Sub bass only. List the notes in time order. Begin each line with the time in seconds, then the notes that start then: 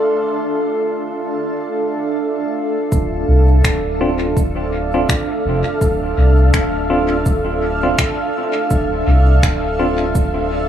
2.92 D1
3.28 C2
3.64 D1
5.45 F1
5.81 D1
6.17 C2
6.54 D1
8.71 D1
9.07 C2
9.43 D1